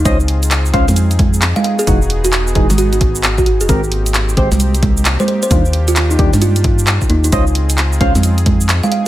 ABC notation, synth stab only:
X:1
M:4/4
L:1/8
Q:"Swing 16ths" 1/4=132
K:Dblyd
V:1 name="Synth stab"
[DFce] z2 [DFcf] z4 | [=E,^G,^D^F] z2 [E,G,D^G] z4 | [A,CGB] z2 [A,CGc] z4 | [E,G,=DF] z2 [E,G,DG] z4 |
[DFce] z2 [DFcf] z4 |]